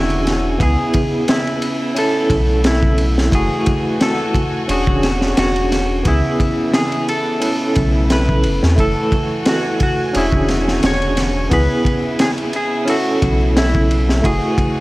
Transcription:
Already playing: sub bass E1, string section D3 F#4 C#5 G#5, tine electric piano C#4 D4 F#4 G#4, clean electric guitar E4
0.10 ride
0.27 snare, ride
0.58 sub bass C#2, string section C#3 B3 E4, tine electric piano B3 E4 G#4, kick, ride
0.63 clean electric guitar G#4
0.94 kick, ride
1.28 clean electric guitar E4, snare, ride
1.47 ride
1.62 ride
1.95 string section A3, tine electric piano C#4 E4 A4, ride
1.99 clean electric guitar A4
2.30 sub bass B1, kick, ride
2.64 clean electric guitar E4, snare, ride
2.83 kick
2.98 ride
3.18 snare
3.31 sub bass F#1, string section E3 A3 F#4 G#5, tine electric piano A3 E4 F#4, clean electric guitar G#4, kick, ride
3.66 kick, ride
4.01 clean electric guitar A4, snare, ride
4.35 kick, ride
4.68 sub bass E1, string section D3 C#5, tine electric piano C#4 D4 F#4 G#4, clean electric guitar F#4, ride
4.87 kick
5.03 snare, ride
5.21 snare
5.37 sub bass E1, clean electric guitar F#4, snare, ride
5.56 ride
5.72 snare, ride
6.03 sub bass C#2, string section C#3 E3 B3 E4, tine electric piano B3 E4, kick, ride
6.07 clean electric guitar E4, tine electric piano G#4
6.40 kick, ride
6.74 clean electric guitar G#4, snare, ride
6.92 ride
7.08 clean electric guitar A4, ride
7.40 string section C#3 A3 E4, tine electric piano C#4 E4 A4, ride
7.75 sub bass B1, kick, ride
8.10 clean electric guitar B4, snare, ride
8.29 kick
8.43 sub bass F#1, ride
8.63 sub bass E2, snare
8.76 sub bass F#1, string section E3 A3 F#4 G#5, tine electric piano A3 E4 A4, kick, ride
8.80 clean electric guitar A4
9.12 kick, ride
9.46 clean electric guitar F#4, snare, ride
9.80 clean electric guitar F#4, kick, ride
10.13 sub bass E1, string section D3 F#4 C#5, tine electric piano C#4 D4 F#4 G#4, ride
10.17 clean electric guitar E4
10.32 kick
10.48 snare, ride
10.68 snare
10.83 sub bass E1, clean electric guitar C#5, snare, ride
11.02 ride
11.17 snare, ride
11.50 sub bass C#2, string section C#3 B3 E4, tine electric piano B3 E4 G#4, clean electric guitar B4, kick, ride
11.85 kick, ride
12.19 clean electric guitar G#4, snare, ride
12.38 ride
12.53 clean electric guitar G#4, ride
12.85 string section A3, tine electric piano C#4 E4 A4, ride
12.90 clean electric guitar F#4
13.22 sub bass B1, kick, ride
13.57 clean electric guitar E4, snare, ride
13.75 kick
13.91 ride
14.09 snare
14.22 sub bass F#1, string section E3 F#4 G#5, tine electric piano A3 E4 F#4, kick, ride
14.26 clean electric guitar G#4
14.58 kick, ride

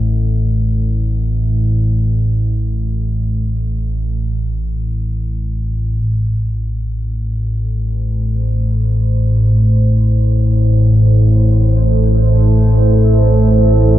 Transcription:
Already playing: synth drone A1 A2
6.02 synth drone A1 A2, ambient pad A3
6.52 ambient pad A4
6.75 ambient pad C5
7.60 ambient pad E4

